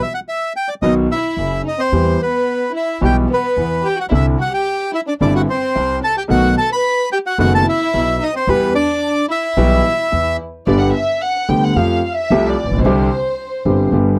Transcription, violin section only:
0.83 0.95 D#4 soft
1.12 1.62 E4 medium
1.66 1.78 D#4 medium
1.79 2.17 C4 soft
2.20 2.71 B3 medium
2.73 2.99 E4 soft
3.02 3.15 G4 medium
3.29 3.80 B3 medium
3.84 3.96 G4 medium
3.97 4.03 F#4 medium
4.10 4.22 E4 medium
4.38 4.51 F#4 medium
4.52 4.90 G4 medium
4.93 4.99 E4 medium
5.07 5.13 D4 medium
5.21 5.33 D4 medium
5.35 5.41 F#4 medium
5.49 5.99 C4 medium
6.04 6.16 A4 medium
6.17 6.23 G4 medium
6.31 6.56 F#4 medium
6.58 6.70 A4 medium
6.72 7.09 B4 medium
7.13 7.19 G4 medium
7.27 7.39 F#4 medium
7.42 7.53 F#4 medium
7.54 7.66 A4 medium
7.67 8.17 E4 medium
8.21 8.34 D#4 medium
8.35 8.47 C4 soft
8.48 8.73 B3 medium
8.75 9.26 D4 medium
9.29 10.36 E4 medium
10.66 10.80 D5 medium
10.81 10.94 F#5 medium
10.94 11.20 E5 medium
11.22 11.49 F#5 medium
11.49 11.63 G5 medium
11.64 11.77 F#5 medium
11.77 12.05 F5 medium
12.06 12.13 F5 medium
12.15 12.50 E5 medium
12.49 12.85 D5 medium
12.85 13.88 C5 medium

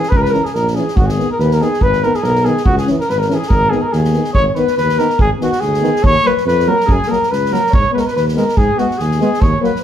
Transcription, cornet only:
0.00 0.11 G#4 loud
0.09 0.18 B4 loud
0.17 0.24 A#4 loud
0.23 0.34 B4 loud
0.33 0.47 A#4 medium
0.46 0.56 G#4 medium
0.55 0.70 A#4 loud
0.70 0.76 A#4 medium
0.75 0.97 G#4 medium
0.96 1.08 F#4 medium
1.06 1.28 G#4 medium
1.31 1.41 A#4 medium
1.39 1.55 B4 medium
1.53 1.63 A#4 medium
1.62 1.83 G#4 medium
1.82 2.05 B4 loud
2.04 2.17 A#4 medium
2.16 2.25 G#4 medium
2.23 2.46 A#4 loud
2.45 2.64 G#4 medium
2.65 2.76 F#4 loud
2.78 2.87 G#4 medium
2.99 3.11 A#4 medium
3.09 3.21 B4 medium
3.19 3.29 A#4 medium
3.29 3.31 A#4 medium
3.34 3.38 G#4 medium
3.39 3.50 G#4 medium
3.49 3.71 A#4 loud
3.70 3.84 G#4 medium
3.82 3.94 A#4 medium
3.92 4.33 G#4 medium
4.33 4.47 C#5 loud
4.47 4.56 C#5 medium
4.55 4.76 B4 medium
4.78 5.00 B4 loud
4.99 5.19 A#4 loud
5.21 5.30 G#4 loud
5.43 5.62 F#4 medium
5.61 6.06 G#4 loud
6.04 6.29 C#5 loud
6.27 6.47 B4 medium
6.47 6.70 B4 loud
6.68 6.94 A#4 medium
6.92 7.13 G#4 loud
7.11 7.33 A#4 medium
7.32 7.54 B4 loud
7.53 7.73 A#4 medium
7.74 7.93 C#5 loud
7.93 8.02 B4 medium
8.00 8.08 A#4 medium
8.06 8.15 B4 medium
8.16 8.26 B4 medium
8.39 8.59 A#4 medium
8.57 8.81 G#4 loud
8.79 9.03 F#4 medium
9.01 9.44 G#4 medium
9.42 9.61 C#5 loud
9.61 9.83 B4 medium
9.61 9.66 C#5 medium

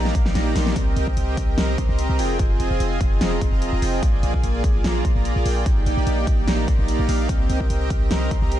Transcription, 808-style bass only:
0.00 0.13 A#1 loud
0.15 0.33 A#1 loud
0.35 0.54 A#1 medium
0.56 0.74 A#1 loud
0.76 0.95 C2 loud
0.96 1.05 C2 loud
1.07 1.15 C2 loud
1.17 1.35 C2 loud
1.37 1.56 C2 loud
1.58 1.76 C2 loud
1.78 1.87 C2 loud
1.89 2.07 C2 loud
2.09 2.20 C2 loud
2.19 2.37 F1 loud
2.39 2.58 F1 loud
2.60 2.69 F1 loud
2.71 2.78 F1 loud
2.80 2.99 F1 loud
3.01 3.19 F1 loud
3.21 3.40 F1 loud
3.41 3.50 F1 loud
3.52 3.71 F1 loud
3.73 3.80 F1 loud
3.82 4.01 F1 loud
4.03 4.21 A#1 loud
4.23 4.32 A#1 loud
4.34 4.42 A#1 medium
4.44 4.62 A#1 loud
4.64 4.82 A#1 loud
4.84 5.03 A#1 loud
5.05 5.13 A#1 loud
5.16 5.34 A#1 loud
5.36 5.44 A#1 loud
5.46 5.64 A#1 loud
5.66 5.84 A#1 loud
5.86 5.95 A#1 loud
5.97 6.05 A#1 loud
6.07 6.25 A#1 loud
6.27 6.46 A#1 loud
6.48 6.66 A#1 loud
6.68 6.77 A#1 loud
6.79 6.97 A#1 loud
6.99 7.07 A#1 loud
7.09 7.27 A#1 loud
7.29 7.48 C2 loud
7.50 7.58 C2 loud
7.60 7.68 C2 loud
7.70 7.88 C2 loud
7.90 8.09 C2 loud
8.11 8.29 C2 loud
8.31 8.40 C2 loud
8.42 8.60 C2 loud

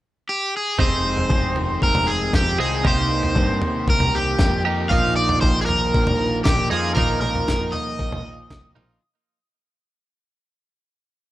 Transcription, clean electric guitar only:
0.79 2.58 C4 medium
0.79 2.59 D#4 medium
0.79 2.57 G#4 medium
2.58 2.83 C4 medium
2.58 2.84 D#4 medium
2.58 2.83 G#4 medium
2.83 4.66 A#3 medium
2.83 4.66 D#4 medium
2.83 4.64 G4 medium
4.65 4.91 A#3 medium
4.65 4.92 D#4 medium
4.65 4.89 G4 medium
4.90 6.72 F3 medium
4.90 6.72 A#3 medium
4.90 6.70 D#4 medium
6.70 6.95 F3 medium
6.70 6.95 A#3 medium
6.70 6.97 D#4 medium
6.95 8.73 F3 medium
6.95 8.73 A#3 medium
6.95 8.74 D#4 loud
8.75 9.00 F3 medium
8.75 8.99 A#3 medium
8.75 8.99 D#4 medium

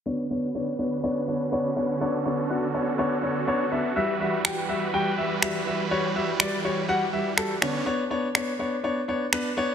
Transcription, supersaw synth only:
0.06 3.92 D3 medium
0.06 3.93 C#4 medium
0.06 7.83 F#4 medium
0.06 1.99 B4 medium
2.01 3.94 A4 medium
3.96 7.59 E3 medium
3.96 7.59 G3 medium
3.96 7.83 B4 medium
7.62 7.86 D3 medium
7.62 7.86 C#4 medium

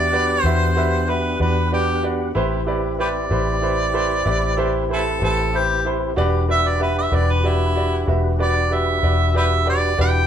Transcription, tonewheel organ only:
0.00 2.32 B3 medium
0.00 2.32 D4 medium
0.00 2.32 G4 medium
0.00 2.32 F#5 medium
2.35 6.13 C4 medium
2.35 6.14 E4 medium
2.35 6.14 G4 medium
2.35 6.13 B4 medium
6.16 9.94 D4 medium
6.16 9.94 F#4 medium
6.16 9.95 G4 medium
6.16 9.94 B4 medium
10.00 10.27 D4 medium
10.00 10.27 E4 medium
10.00 10.27 G4 medium
10.00 10.27 B4 medium

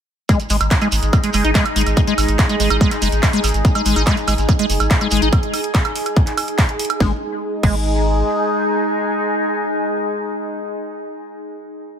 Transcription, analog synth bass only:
0.50 0.57 G#1 loud
0.61 0.68 G#1 medium
0.92 0.99 G#1 medium
1.03 1.10 G#1 medium
1.34 1.41 F#1 loud
1.45 1.52 G#1 medium
1.76 1.83 G#1 loud
1.86 1.94 G#1 medium
2.18 2.25 G#1 loud
2.28 2.36 G#1 medium
2.60 2.67 G#1 medium
2.70 2.78 G#1 medium
3.02 3.09 F#1 loud
3.12 3.20 G#1 medium
3.44 3.51 G#1 loud
3.54 3.61 G#1 medium
3.86 3.93 G#1 medium
3.96 4.03 G#1 medium
4.28 4.35 G#1 medium
4.38 4.45 G#1 medium
4.70 4.77 F#1 medium
4.80 4.87 G#1 medium
5.12 5.19 G#1 loud
5.22 5.29 G#1 medium
7.00 7.12 G#1 loud
7.63 8.22 G#1 loud

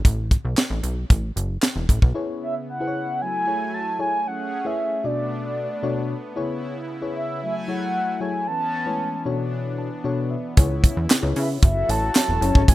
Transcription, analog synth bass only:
0.05 0.37 A1 loud
0.45 0.55 B1 medium
0.70 0.81 A1 loud
0.83 1.05 B1 loud
1.10 1.32 A1 medium
1.36 1.58 F#1 medium
1.76 1.87 E1 medium
1.89 2.00 A1 loud
2.02 2.13 B1 medium
10.57 10.90 C#2 loud
10.97 11.08 E2 medium
11.23 11.34 C#2 loud
11.36 11.58 C#3 loud
11.63 11.84 F#1 medium
11.89 12.11 A1 loud
12.28 12.39 E1 medium
12.41 12.52 F#1 loud
12.55 12.66 G#1 loud
12.68 12.75 A1 loud

